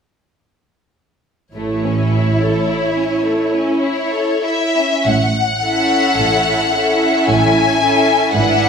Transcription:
0, 0, Header, 1, 6, 480
1, 0, Start_track
1, 0, Key_signature, 3, "major"
1, 0, Tempo, 1138520
1, 651, Time_signature, 3, 2, 24, 8
1, 1606, Tempo, 1247401
1, 2086, Tempo, 1113173
1, 3046, Tempo, 1073345
1, 3675, End_track
2, 0, Start_track
2, 0, Title_t, "Violin section"
2, 0, Program_c, 0, 48
2, 650, Note_on_c, 0, 73, 26
2, 1589, Note_off_c, 0, 73, 0
2, 1607, Note_on_c, 0, 73, 40
2, 1835, Note_off_c, 0, 73, 0
2, 1849, Note_on_c, 0, 76, 48
2, 2086, Note_off_c, 0, 76, 0
2, 2088, Note_on_c, 0, 78, 44
2, 3046, Note_on_c, 0, 80, 44
2, 3048, Note_off_c, 0, 78, 0
2, 3519, Note_on_c, 0, 78, 54
2, 3523, Note_off_c, 0, 80, 0
2, 3675, Note_off_c, 0, 78, 0
2, 3675, End_track
3, 0, Start_track
3, 0, Title_t, "Violin section"
3, 0, Program_c, 1, 48
3, 655, Note_on_c, 1, 57, 23
3, 765, Note_off_c, 1, 57, 0
3, 776, Note_on_c, 1, 61, 24
3, 894, Note_off_c, 1, 61, 0
3, 896, Note_on_c, 1, 64, 24
3, 1012, Note_off_c, 1, 64, 0
3, 1013, Note_on_c, 1, 69, 27
3, 1127, Note_on_c, 1, 64, 29
3, 1128, Note_off_c, 1, 69, 0
3, 1243, Note_off_c, 1, 64, 0
3, 1251, Note_on_c, 1, 61, 30
3, 1365, Note_off_c, 1, 61, 0
3, 1366, Note_on_c, 1, 57, 32
3, 1484, Note_off_c, 1, 57, 0
3, 1485, Note_on_c, 1, 61, 36
3, 1608, Note_off_c, 1, 61, 0
3, 1608, Note_on_c, 1, 64, 36
3, 1725, Note_on_c, 1, 69, 33
3, 1726, Note_off_c, 1, 64, 0
3, 1846, Note_on_c, 1, 64, 29
3, 1850, Note_off_c, 1, 69, 0
3, 1971, Note_off_c, 1, 64, 0
3, 1972, Note_on_c, 1, 61, 33
3, 2086, Note_off_c, 1, 61, 0
3, 2329, Note_on_c, 1, 69, 33
3, 2330, Note_on_c, 1, 76, 33
3, 2802, Note_off_c, 1, 69, 0
3, 2803, Note_off_c, 1, 76, 0
3, 2811, Note_on_c, 1, 69, 29
3, 2812, Note_on_c, 1, 76, 33
3, 3273, Note_off_c, 1, 69, 0
3, 3274, Note_off_c, 1, 76, 0
3, 3286, Note_on_c, 1, 69, 30
3, 3287, Note_on_c, 1, 76, 29
3, 3520, Note_off_c, 1, 69, 0
3, 3521, Note_off_c, 1, 76, 0
3, 3526, Note_on_c, 1, 71, 31
3, 3527, Note_on_c, 1, 76, 34
3, 3675, Note_off_c, 1, 71, 0
3, 3675, Note_off_c, 1, 76, 0
3, 3675, End_track
4, 0, Start_track
4, 0, Title_t, "Viola section"
4, 0, Program_c, 2, 48
4, 650, Note_on_c, 2, 64, 28
4, 1989, Note_off_c, 2, 64, 0
4, 2330, Note_on_c, 2, 61, 29
4, 2330, Note_on_c, 2, 64, 26
4, 2803, Note_off_c, 2, 61, 0
4, 2803, Note_off_c, 2, 64, 0
4, 2811, Note_on_c, 2, 61, 34
4, 2811, Note_on_c, 2, 64, 35
4, 3273, Note_off_c, 2, 61, 0
4, 3273, Note_off_c, 2, 64, 0
4, 3281, Note_on_c, 2, 61, 31
4, 3281, Note_on_c, 2, 64, 32
4, 3517, Note_off_c, 2, 64, 0
4, 3518, Note_off_c, 2, 61, 0
4, 3523, Note_on_c, 2, 62, 35
4, 3524, Note_on_c, 2, 64, 31
4, 3675, Note_off_c, 2, 62, 0
4, 3675, Note_off_c, 2, 64, 0
4, 3675, End_track
5, 0, Start_track
5, 0, Title_t, "Cello section"
5, 0, Program_c, 3, 48
5, 648, Note_on_c, 3, 45, 28
5, 1047, Note_off_c, 3, 45, 0
5, 2085, Note_on_c, 3, 45, 43
5, 2507, Note_off_c, 3, 45, 0
5, 2572, Note_on_c, 3, 45, 38
5, 2983, Note_off_c, 3, 45, 0
5, 3043, Note_on_c, 3, 45, 42
5, 3455, Note_off_c, 3, 45, 0
5, 3521, Note_on_c, 3, 44, 41
5, 3675, Note_off_c, 3, 44, 0
5, 3675, End_track
6, 0, Start_track
6, 0, Title_t, "Double bass section"
6, 0, Program_c, 4, 48
6, 649, Note_on_c, 4, 33, 30
6, 1047, Note_off_c, 4, 33, 0
6, 2085, Note_on_c, 4, 33, 41
6, 2507, Note_off_c, 4, 33, 0
6, 2573, Note_on_c, 4, 33, 32
6, 2983, Note_off_c, 4, 33, 0
6, 3046, Note_on_c, 4, 33, 40
6, 3457, Note_off_c, 4, 33, 0
6, 3525, Note_on_c, 4, 32, 45
6, 3675, Note_off_c, 4, 32, 0
6, 3675, End_track
0, 0, End_of_file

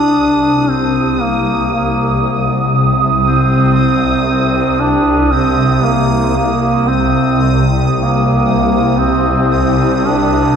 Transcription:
0, 0, Header, 1, 4, 480
1, 0, Start_track
1, 0, Key_signature, -3, "minor"
1, 0, Tempo, 1036269
1, 1260, Time_signature, 4, 2, 24, 8
1, 2699, Tempo, 1052632
1, 4858, End_track
2, 0, Start_track
2, 0, Title_t, "Synth texture"
2, 0, Program_c, 0, 99
2, 0, Note_on_c, 0, 87, 66
2, 4858, Note_off_c, 0, 87, 0
2, 4858, End_track
3, 0, Start_track
3, 0, Title_t, "Duduk"
3, 0, Program_c, 1, 69
3, 0, Note_on_c, 1, 62, 94
3, 323, Note_on_c, 1, 60, 74
3, 330, Note_off_c, 1, 62, 0
3, 563, Note_on_c, 1, 58, 70
3, 570, Note_off_c, 1, 60, 0
3, 793, Note_off_c, 1, 58, 0
3, 805, Note_on_c, 1, 58, 66
3, 1134, Note_off_c, 1, 58, 0
3, 1507, Note_on_c, 1, 60, 93
3, 1962, Note_off_c, 1, 60, 0
3, 1979, Note_on_c, 1, 60, 77
3, 2223, Note_on_c, 1, 62, 84
3, 2230, Note_off_c, 1, 60, 0
3, 2462, Note_on_c, 1, 60, 88
3, 2469, Note_off_c, 1, 62, 0
3, 2708, Note_on_c, 1, 58, 77
3, 2715, Note_off_c, 1, 60, 0
3, 2942, Note_off_c, 1, 58, 0
3, 2948, Note_on_c, 1, 58, 71
3, 3182, Note_on_c, 1, 60, 81
3, 3188, Note_off_c, 1, 58, 0
3, 3534, Note_off_c, 1, 60, 0
3, 3666, Note_on_c, 1, 58, 75
3, 4146, Note_on_c, 1, 60, 73
3, 4152, Note_off_c, 1, 58, 0
3, 4629, Note_on_c, 1, 62, 71
3, 4636, Note_off_c, 1, 60, 0
3, 4858, Note_off_c, 1, 62, 0
3, 4858, End_track
4, 0, Start_track
4, 0, Title_t, "Synth drone"
4, 0, Program_c, 2, 95
4, 0, Note_on_c, 2, 36, 66
4, 0, Note_on_c, 2, 48, 71
4, 4858, Note_off_c, 2, 36, 0
4, 4858, Note_off_c, 2, 48, 0
4, 4858, End_track
0, 0, End_of_file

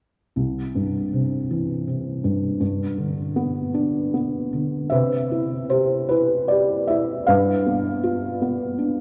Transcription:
0, 0, Header, 1, 2, 480
1, 0, Start_track
1, 0, Key_signature, 0, "major"
1, 0, Tempo, 783290
1, 218, Time_signature, 6, 3, 24, 8
1, 693, Tempo, 742574
1, 2133, Tempo, 784314
1, 4533, Tempo, 755668
1, 5630, End_track
2, 0, Start_track
2, 0, Title_t, "Felt piano"
2, 0, Program_c, 0, 0
2, 221, Note_on_c, 0, 36, 41
2, 349, Control_c, 0, 64, 127
2, 461, Note_on_c, 0, 43, 30
2, 694, Note_on_c, 0, 48, 34
2, 935, Note_on_c, 0, 52, 35
2, 1164, Note_off_c, 0, 48, 0
2, 1174, Note_on_c, 0, 48, 34
2, 1385, Note_off_c, 0, 43, 0
2, 1409, Note_on_c, 0, 43, 35
2, 1624, Note_off_c, 0, 36, 0
2, 1627, Note_off_c, 0, 52, 0
2, 1635, Note_off_c, 0, 43, 0
2, 1635, Note_off_c, 0, 48, 0
2, 1645, Note_on_c, 0, 43, 44
2, 1656, Control_c, 0, 64, 0
2, 1778, Control_c, 0, 64, 127
2, 1887, Note_on_c, 0, 50, 37
2, 2134, Note_on_c, 0, 59, 43
2, 2368, Note_on_c, 0, 62, 44
2, 2601, Note_off_c, 0, 59, 0
2, 2610, Note_on_c, 0, 59, 37
2, 2822, Note_off_c, 0, 50, 0
2, 2847, Note_on_c, 0, 50, 38
2, 3063, Note_off_c, 0, 43, 0
2, 3066, Note_off_c, 0, 62, 0
2, 3074, Note_on_c, 0, 76, 64
2, 3076, Note_off_c, 0, 59, 0
2, 3081, Note_off_c, 0, 50, 0
2, 3086, Note_on_c, 0, 48, 47
2, 3087, Note_on_c, 0, 71, 45
2, 3098, Control_c, 0, 64, 0
2, 3198, Control_c, 0, 64, 127
2, 3329, Note_on_c, 0, 64, 35
2, 3564, Note_on_c, 0, 72, 58
2, 3573, Note_on_c, 0, 67, 40
2, 3582, Note_off_c, 0, 76, 0
2, 3792, Note_off_c, 0, 71, 0
2, 3795, Note_off_c, 0, 72, 0
2, 3803, Note_on_c, 0, 71, 61
2, 3808, Note_off_c, 0, 64, 0
2, 3817, Note_on_c, 0, 64, 37
2, 4044, Note_on_c, 0, 74, 55
2, 4053, Note_off_c, 0, 67, 0
2, 4060, Note_off_c, 0, 71, 0
2, 4062, Note_on_c, 0, 67, 37
2, 4285, Note_on_c, 0, 76, 65
2, 4290, Note_off_c, 0, 64, 0
2, 4299, Note_off_c, 0, 74, 0
2, 4299, Note_on_c, 0, 64, 39
2, 4509, Note_off_c, 0, 48, 0
2, 4522, Note_off_c, 0, 67, 0
2, 4524, Note_on_c, 0, 77, 70
2, 4528, Note_off_c, 0, 64, 0
2, 4531, Note_on_c, 0, 71, 51
2, 4533, Note_on_c, 0, 43, 47
2, 4535, Note_off_c, 0, 76, 0
2, 4542, Control_c, 0, 64, 0
2, 4661, Control_c, 0, 64, 127
2, 4777, Note_on_c, 0, 59, 36
2, 5011, Note_on_c, 0, 65, 45
2, 5245, Note_off_c, 0, 59, 0
2, 5255, Note_on_c, 0, 59, 41
2, 5488, Note_on_c, 0, 62, 39
2, 5630, Note_off_c, 0, 43, 0
2, 5630, Note_off_c, 0, 59, 0
2, 5630, Note_off_c, 0, 62, 0
2, 5630, Note_off_c, 0, 65, 0
2, 5630, Note_off_c, 0, 71, 0
2, 5630, Note_off_c, 0, 77, 0
2, 5630, End_track
0, 0, End_of_file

